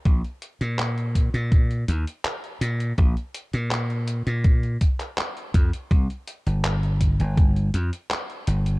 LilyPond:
<<
  \new Staff \with { instrumentName = "Slap bass" } { \clef bass \time 4/4 \key bes \mixolydian \tempo 4 = 82 bes,,16 r8 bes,4 bes,8. ees,16 r8. bes,8 | bes,,16 r8 bes,4 bes,8. r4 f,16 r16 | c,16 r8 g,,4 g,,8. f,16 r8. g,,8 | }
  \new DrumStaff \with { instrumentName = "Drums" } \drummode { \time 4/4 <hh bd>16 hh16 hh16 hh16 <hc hh>16 hh16 <hh bd>16 hh16 <hh bd>16 hh16 hh16 hh16 <hc hh>16 hh16 hh16 hh16 | <hh bd>16 hh16 hh16 hh16 <hc hh>16 hh16 hh16 hh16 <hh bd>16 hh16 <hh bd>16 <hc hh>16 <hc hh>16 hh16 <hh bd>16 hh16 | <hh bd>16 hh16 hh16 hh16 <hc hh>16 hh16 <hh bd>16 hh16 <hh bd>16 hh16 hh16 hh16 <hc hh>16 hh16 hh16 hh16 | }
>>